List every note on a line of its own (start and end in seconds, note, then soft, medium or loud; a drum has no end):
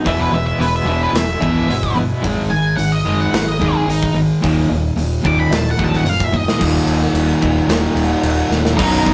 0.05 0.26 E1 loud
0.05 0.30 E2 medium
0.05 0.58 E2 medium
0.05 0.31 B2 loud
0.05 0.59 B2 medium
0.05 0.31 E3 medium
0.05 0.30 E3 medium
0.05 0.32 G#3 medium
0.05 0.32 B3 loud
0.05 0.33 E4 loud
0.05 0.20 E5 loud
0.05 kick loud
0.05 open hi-hat medium
0.20 0.33 B4 medium
0.31 0.52 E1 medium
0.31 0.57 E2 medium
0.31 0.57 B2 medium
0.31 0.47 E3 medium
0.31 0.46 G#3 medium
0.31 0.45 B3 medium
0.31 0.44 E4 medium
0.31 0.45 E5 medium
0.46 0.59 E3 medium
0.46 0.59 G#3 medium
0.46 0.60 B3 medium
0.46 0.60 E4 medium
0.46 0.60 E5 medium
0.58 0.80 E1 medium
0.58 0.84 E2 medium
0.58 1.14 E2 medium
0.58 0.84 B2 medium
0.58 1.15 B2 medium
0.58 0.86 E3 loud
0.58 0.87 G#3 loud
0.58 0.88 B3 loud
0.58 0.88 E4 loud
0.58 0.73 B4 medium
0.58 open hi-hat medium
0.76 0.86 E5 medium
0.85 1.07 E1 loud
0.85 1.12 E2 medium
0.85 1.12 B2 medium
0.85 1.13 E3 loud
0.85 1.03 E3 medium
0.85 1.02 G#3 medium
0.85 1.01 E5 loud
0.89 1.01 B3 medium
0.89 1.01 E4 medium
1.02 1.14 E3 medium
1.02 1.15 G#3 medium
1.02 1.15 B3 medium
1.02 1.16 E4 medium
1.02 1.16 B4 medium
1.13 1.34 E1 medium
1.13 1.39 E2 medium
1.13 1.39 B2 medium
1.13 1.29 E3 medium
1.13 1.29 G#3 medium
1.13 1.28 B3 medium
1.13 1.41 E5 medium
1.13 snare loud
1.13 open hi-hat medium
1.17 1.27 E4 medium
1.28 1.56 E3 medium
1.28 1.55 G#3 medium
1.28 1.54 B3 medium
1.28 1.53 E4 medium
1.40 1.63 B0 medium
1.40 1.67 E2 medium
1.40 1.67 B2 medium
1.40 1.67 E3 loud
1.40 1.95 E5 loud
1.40 kick medium
1.54 1.69 E3 medium
1.54 1.69 G#3 medium
1.54 1.70 B3 medium
1.54 1.70 E4 medium
1.68 2.09 G1 medium
1.68 1.93 E2 medium
1.68 2.22 E2 medium
1.68 1.94 B2 loud
1.68 2.23 B2 medium
1.68 1.94 E3 medium
1.68 1.95 G#3 medium
1.68 1.96 B3 loud
1.68 1.96 E4 medium
1.68 open hi-hat medium
1.83 kick medium
1.96 2.21 E2 medium
1.96 2.21 B2 medium
1.96 2.11 E3 medium
1.96 2.11 G#3 medium
1.96 2.10 B3 medium
1.96 2.09 E4 medium
2.10 2.24 E3 medium
2.10 2.23 G#3 medium
2.10 2.23 B3 medium
2.10 2.22 E4 medium
2.22 2.44 G#1 medium
2.22 2.49 G#2 medium
2.22 2.49 D#3 loud
2.22 2.49 G#3 loud
2.22 kick loud
2.22 open hi-hat medium
2.50 2.71 G#1 medium
2.50 2.76 G#2 medium
2.50 2.76 D#3 medium
2.50 2.76 G#5 medium
2.77 2.99 G#1 medium
2.77 3.03 G#2 medium
2.77 3.03 D#3 medium
2.77 2.91 F#5 medium
2.77 open hi-hat medium
2.92 3.19 D#5 medium
3.05 3.26 F#1 medium
3.05 3.30 G#2 medium
3.05 3.30 D#3 medium
3.05 3.32 G#3 loud
3.21 3.47 F#5 medium
3.31 3.74 G#1 medium
3.31 3.57 G#2 medium
3.31 3.57 D#3 medium
3.31 snare loud
3.31 open hi-hat medium
3.48 3.75 D#5 medium
3.60 3.86 G#2 medium
3.60 3.86 D#3 medium
3.60 3.87 G#3 loud
3.60 kick loud
3.75 3.88 G#4 loud
3.87 4.29 G#1 loud
3.87 4.12 G#2 medium
3.87 4.13 D#3 medium
3.87 4.15 D#4 loud
3.87 open hi-hat medium
4.03 kick medium
4.14 4.39 G#2 medium
4.14 4.40 D#3 medium
4.42 4.64 D#1 medium
4.42 4.67 D#2 medium
4.42 4.68 A#2 medium
4.42 4.68 D#3 loud
4.42 kick loud
4.42 open hi-hat medium
4.69 4.90 D#1 medium
4.69 4.94 D#2 medium
4.69 4.94 A#2 medium
4.96 5.17 D#1 medium
4.96 5.22 D#2 medium
4.96 5.22 A#2 medium
4.96 open hi-hat medium
5.24 5.45 D#1 medium
5.24 5.50 D#2 medium
5.24 5.50 A#2 medium
5.24 5.50 D#3 medium
5.24 5.39 D6 medium
5.24 kick medium
5.40 5.56 B5 medium
5.50 5.71 D#1 medium
5.50 5.76 D#2 medium
5.50 5.76 A#2 medium
5.50 snare loud
5.50 open hi-hat medium
5.56 5.67 A5 loud
5.71 5.81 F#5 medium
5.78 5.99 A#1 medium
5.78 6.04 D#2 medium
5.78 6.05 A#2 medium
5.78 6.05 D#3 loud
5.78 kick loud
5.84 5.96 A5 medium
5.93 6.09 F#5 medium
5.93 snare soft
6.04 6.45 F#1 medium
6.04 6.30 D#2 medium
6.04 6.31 A#2 medium
6.04 open hi-hat medium
6.09 6.24 F5 loud
6.20 6.35 E5 loud
6.20 kick medium
6.33 6.57 D#2 medium
6.33 6.58 A#2 medium
6.33 6.61 D#5 loud
6.33 kick medium
6.48 snare medium
6.58 6.79 D#1 loud
6.58 7.40 D#2 loud
6.58 7.40 A#2 loud
6.58 7.40 D#3 loud
6.58 kick loud
6.58 crash loud
6.58 crash medium
6.86 7.05 D#1 medium
6.86 crash medium
7.02 snare soft
7.13 7.31 D#1 medium
7.13 crash medium
7.41 7.60 D#1 loud
7.41 8.77 D#2 medium
7.41 8.77 A#2 medium
7.41 8.76 D#3 medium
7.41 kick medium
7.41 crash medium
7.68 7.86 D#1 medium
7.68 8.76 D#2 medium
7.68 8.77 A#2 medium
7.68 8.78 D#3 medium
7.68 snare loud
7.68 crash medium
7.95 8.13 D#1 medium
7.95 crash medium
8.23 8.41 D#1 medium
8.23 crash medium
8.49 8.79 D#1 medium
8.49 snare medium
8.65 snare medium
8.78 9.04 B0 loud
8.78 9.14 B1 loud
8.78 9.03 F#2 loud
8.78 9.04 B2 loud
8.78 9.05 F#3 loud
8.78 9.14 D#4 medium
8.78 9.05 D#4 loud
8.78 9.14 D#5 loud
8.78 kick loud
8.78 crash loud
8.78 crash medium
9.04 9.14 B0 medium
9.04 9.14 F#2 medium
9.04 9.14 B2 medium
9.04 9.14 F#3 medium
9.04 9.14 D#4 loud
9.04 kick loud
9.04 crash medium